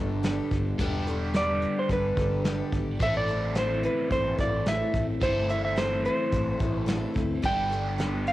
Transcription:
Already playing: G1 G2 D3 G3 B3 D4 G4 A4
0.00 D4
0.23 G3 B3 D4 G4 A4, snare, closed hi-hat
0.51 G1 D4 G4 A4, kick, closed hi-hat
0.78 E1 G2 D3 G3 B3 D4 G4 A4, kick, closed hi-hat
1.07 D4 G4 A4, closed hi-hat
1.34 G3 B3 D4 G4 A4 D5, snare, closed hi-hat
1.62 closed hi-hat
1.79 C5
1.89 G1 B3 D4 G4 A4 B4, kick, closed hi-hat
2.17 G1 D4 G4 A4, kick, closed hi-hat
2.44 G3 B3 D4 G4 A4, snare, closed hi-hat
2.72 G#1 D4 G4 A4, kick, closed hi-hat
3.00 A1 A2 E3 A3 C4 E4 A4 E5, kick, closed hi-hat
3.17 D5
3.28 A3 C4 E4 A4, closed hi-hat
3.55 A2 E3 A3 C4 E4 A4 C5, snare, closed hi-hat
3.83 B4, closed hi-hat
4.11 A1 A3 C4 E4 A4 C5, kick, closed hi-hat
4.39 A1 A3 C4 E4 A4 D5, kick, closed hi-hat
4.66 A2 E3 A3 C4 E4 A4 E5, snare, closed hi-hat
4.94 A1 A3 C4 E4 A4, kick, closed hi-hat
5.21 G1 A2 E3 A3 C4 E4 A4 C5, kick, closed hi-hat
5.49 A3 C4 E4 A4 E5, closed hi-hat
5.65 E5
5.76 A2 E3 A3 C4 E4 A4 C5, snare, closed hi-hat
6.05 C5, closed hi-hat
6.32 A1 A3 C4 E4 A4, kick, closed hi-hat
6.59 A1 A3 C4 E4 A4, kick, closed hi-hat
6.77 B4
6.86 A2 E3 A3 C4 E4 A4, snare, closed hi-hat
7.14 D2 A3 C4 E4 A4, kick, closed hi-hat
7.42 G1 G2 D3 G3 B3 D4 G4 A4 G5, kick, closed hi-hat
7.69 D4 G4 A4, closed hi-hat
7.98 G3 B3 D4 G4 A4, snare, closed hi-hat
8.27 F5, closed hi-hat

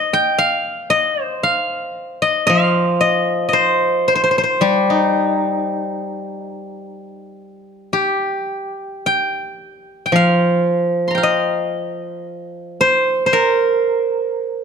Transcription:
Already playing: D#5
0.13 G5
0.38 F5
0.90 D#5
1.24 C5
1.43 F5
2.22 D#5
2.47 F3 F5
3.01 D#5
3.49 D#5
3.53 C5
4.08 C5
4.15 C5
4.24 C5
4.31 C5
4.38 C5
4.43 C5
4.61 G3 G4
4.90 D#4
7.93 G4
9.06 G5
10.06 G5
10.12 F3 F5
11.08 A#5 C6
11.15 F5 G5
11.23 D#5
12.81 C5
13.26 C5
13.33 A#4

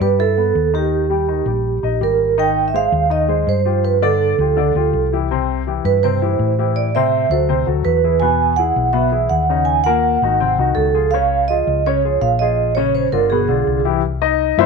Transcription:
0.00 G2 G3 G4 B4
0.19 E4 A4 E5
0.37 B3 B4
0.55 D#2
0.74 D#3 D#4 G4
1.10 G3 G4
1.28 D#3 D#4
1.46 A#1 G3 G4
1.83 A#1 D#4 D#5
2.01 G#1 G3 G4 A#4
2.38 D#3 D#4 D#5 G5
2.68 E5
2.74 G#3 G#4 C5 F5
2.92 D#2
3.10 D#3 D#4 D#5
3.28 G#3 G#4 C5
3.47 G2 C5
3.65 F3 F4 G4
3.84 B4
4.02 D3 D4 A4 D5
4.38 D2 F3 F4 G4
4.57 D3 D4 D5
4.75 D2 F3 F4 G4
4.93 C2
5.13 E3 E4 G4
5.31 C3 C4 C5
5.67 E3 E4 G4
5.85 G2 B4
6.03 C3 C4 C5
6.22 E3 E4 G4
6.39 A2
6.59 E3 E4 G4
6.76 D5
6.95 C3 C4 C5 E5
7.30 D2 F#3 F#4 A4 C5
7.49 C3 C4 C5
7.67 D2 F#3 F#4 A4
7.85 E2 B4
8.04 E3 E4 G#4
8.20 B2 B3 B4 G#5
8.56 E3 E4 G#4 F#5
8.76 B1
8.93 B2 B3 B4 E5
9.12 E3 E4 G#4
9.30 D#2 F#5
9.49 C#3 C#4 D#4
9.65 G#5
9.84 A#2 A#3 A#4 F#5
10.22 G#1 D#3 D#4 F#4
10.40 C3 C4 C5
10.58 C2 D#3 D#4 F#4
10.75 C#2 A4
10.94 F3 F4 G#4
11.11 C#3 C#4 C#5 F5
11.48 F3 F4 G#4 D#5
11.67 C#2
11.86 C#3 C#4 C#5
12.05 F3 F4 G#4
12.21 A#1 F5
12.39 F3 F4 G#4 D#5
12.75 C#3 C#4 C#5
12.95 C5
13.12 G1 D3 D4 F4 A#4
13.30 B2 B3 G#4 B4
13.48 B1 D3 D4 F4
13.67 C2
13.85 E3 E4 G4
14.22 D#4 D#5
14.58 G2 E3 B3 D4 E4 B4 C5 E5

